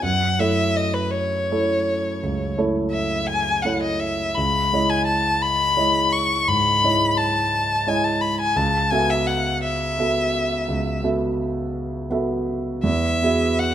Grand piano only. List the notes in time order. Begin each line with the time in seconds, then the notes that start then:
0.03 F#2
0.39 A3 E4 A4 C#5
1.51 A3 E4 A4 C#5
2.23 C#2
2.58 A3 E4 A4 C#5
3.65 A3 E4 A4 C#5
4.37 C#2
4.73 G#3 E4 C#5 D#5
5.77 G#3 E4 C#5 D#5
6.48 G#2
6.84 G#3 E4 C#5 D#5
7.86 G#3 E4 C#5 D#5
8.56 C#2
8.92 B3 F#4 A4 E5
9.99 B3 F#4 A4 E5
10.68 C#2
11.03 B3 F#4 A4 E5
12.10 B3 F#4 A4 E5
12.83 E2
13.22 B3 F#4 G#4 E5